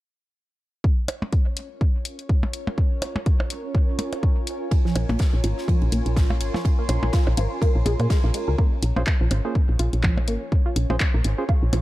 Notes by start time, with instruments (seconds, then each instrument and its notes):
0.84 synth texture C#4 C#5, ambient pad F4, kick
1.02 ambient pad A#4
1.08 closed hi-hat, percussion blips
1.14 ambient pad C#5
1.22 percussion blips
1.33 kick, closed hi-hat
1.57 closed hi-hat
1.81 kick
2.05 closed hi-hat
2.19 closed hi-hat
2.29 kick
2.43 percussion blips
2.53 ambient pad G#5, closed hi-hat
2.67 percussion blips
2.78 kick
3.02 closed hi-hat, percussion blips
3.16 percussion blips
3.26 kick, closed hi-hat
3.40 percussion blips
3.50 closed hi-hat
3.75 kick
3.99 closed hi-hat, percussion blips
4.13 closed hi-hat, percussion blips
4.23 kick
4.37 ambient pad C6
4.47 closed hi-hat
4.71 kick, ride
4.85 synth arpeggio sound F3, snare
4.96 fm bass A#1, closed hi-hat, ride, percussion blips
5.09 fm bass A#1, synth arpeggio sound A#3, ride, percussion blips
5.19 kick, snare, closed hi-hat, ride
5.33 fm bass A#1
5.44 fm bass G#1, synth arpeggio sound F4, closed hi-hat, ride
5.58 snare
5.68 synth arpeggio sound F3, kick, ride
5.82 fm bass A#1, ride
5.92 fm bass A#1, synth arpeggio sound A#3, closed hi-hat, ride
6.06 fm bass A#1, closed hi-hat
6.16 kick, snare, ride
6.30 synth arpeggio sound F4, percussion blips
6.41 fm bass G#1, closed hi-hat, ride
6.54 synth arpeggio sound F3, snare, percussion blips
6.65 kick, ride
6.79 synth arpeggio sound A#3
6.89 fm bass A#1, closed hi-hat, ride, percussion blips
7.03 fm bass A#1, percussion blips
7.13 synth arpeggio sound F4, kick, snare, closed hi-hat, ride
7.27 fm bass A#1, percussion blips
7.37 fm bass G#1, synth arpeggio sound F3, closed hi-hat, ride
7.62 synth arpeggio sound A#3, kick, ride
7.75 fm bass A#1
7.86 fm bass A#1, synth arpeggio sound G#3, closed hi-hat, ride, percussion blips
8.00 fm bass A#2, synth arpeggio sound A#3, closed hi-hat, percussion blips
8.10 synth arpeggio sound G#3, kick, snare, ride
8.24 fm bass A#1, synth arpeggio sound A#3
8.34 synth arpeggio sound G#3, closed hi-hat, ride
8.48 fm bass C#2, synth arpeggio sound A#4
8.58 synth arpeggio sound A#3, synth texture C#4 C#5, kick
8.83 fm bass A#1, ambient pad C#5, closed hi-hat
8.96 fm bass A#1, synth stab C#4 F4 G#4 C5, synth arpeggio sound F4, percussion blips
9.07 kick, clap, closed hi-hat
9.21 fm bass A#1, synth arpeggio sound F3
9.31 fm bass G#1, closed hi-hat, percussion blips
9.45 synth arpeggio sound A#3, synth stab C#4 F4 G#4 C5
9.55 kick
9.69 fm bass A#1
9.79 fm bass A#1, synth arpeggio sound F4, closed hi-hat
9.93 fm bass A#1, closed hi-hat
10.03 synth arpeggio sound F3, kick, clap
10.17 percussion blips
10.28 fm bass G#1, synth arpeggio sound A#3, closed hi-hat
10.52 kick
10.66 synth arpeggio sound F4
10.76 fm bass A#1, closed hi-hat
10.90 fm bass A#1, synth arpeggio sound F3, synth stab C#4 F4 G#4 C5, percussion blips
11.00 kick, clap, closed hi-hat, percussion blips
11.14 fm bass A#1, synth arpeggio sound A#3
11.24 fm bass G#1, closed hi-hat
11.38 synth stab C#4 F4 G#4 C5
11.49 synth arpeggio sound F4, kick
11.63 fm bass A#1
11.73 fm bass A#1, synth arpeggio sound F3, closed hi-hat, percussion blips